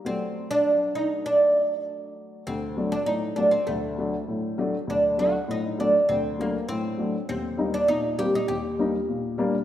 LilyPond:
<<
  \new Staff \with { instrumentName = "Oud" } { \time 2/4 \tempo 4 = 100 c'8. d'8. ees'8 | d'4. r8 | c'8. d'16 ees'8 d'16 c'16 | a4 r4 |
d'8 fis'8 ees'8 d'8 | c'8 bes8 c'8. r16 | c'8. d'16 ees'8 g'16 ees'16 | g'4 r4 | }
  \new Staff \with { instrumentName = "Upright piano" } { \time 2/4 << { <fis a d''>2~ | <fis a d''>2 | r8 <fis a d'>16 r8. <fis a d'>16 r16 | r8 <fis a d'>16 r8. <fis a d'>16 r16 |
r8 <fis a d'>16 r8. <fis a d'>16 r16 | r8 <fis a d'>16 r8. <fis a d'>16 r16 | r8 <g bes ees'>16 r8. <g bes c'>16 r16 | r8 <g bes ees'>16 r8. <g bes d'>16 r16 | } \\ { r2 | r2 | d,4 a,4 | d,4 a,4 |
d,4 a,4 | d,4 a,4 | ees,4 bes,4 | ees,4 bes,4 | } >> }
>>